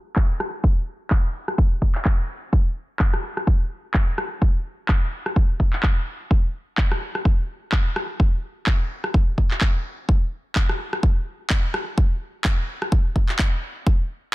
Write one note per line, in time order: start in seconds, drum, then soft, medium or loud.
0.16 kick loud
0.16 clap loud
0.40 cross-stick medium
0.64 kick loud
1.11 kick loud
1.11 clap loud
1.48 cross-stick medium
1.58 kick loud
1.82 kick medium
1.95 clap soft
2.05 kick loud
2.05 clap loud
2.53 kick loud
3.00 kick loud
3.00 clap loud
3.13 cross-stick medium
3.37 cross-stick medium
3.47 kick loud
3.94 kick loud
3.94 clap loud
4.18 cross-stick medium
4.42 kick loud
4.89 kick loud
4.89 clap loud
5.26 cross-stick medium
5.36 kick loud
5.60 kick medium
5.73 clap soft
5.83 kick loud
5.83 clap loud
6.31 kick loud
6.78 kick loud
6.78 clap loud
6.92 cross-stick medium
7.15 cross-stick medium
7.25 kick loud
7.72 kick loud
7.72 clap loud
7.96 cross-stick medium
8.20 kick loud
8.66 kick loud
8.66 clap loud
9.04 cross-stick medium
9.14 kick loud
9.38 kick medium
9.51 clap soft
9.61 kick loud
9.61 clap loud
10.09 kick loud
10.55 kick loud
10.55 clap loud
10.69 cross-stick medium
10.93 cross-stick medium
11.03 kick loud
11.50 kick loud
11.50 clap loud
11.74 cross-stick medium
11.98 kick loud
12.44 kick loud
12.44 clap loud
12.82 cross-stick medium
12.92 kick loud
13.16 kick medium
13.29 clap soft
13.39 kick loud
13.39 clap loud
13.87 kick loud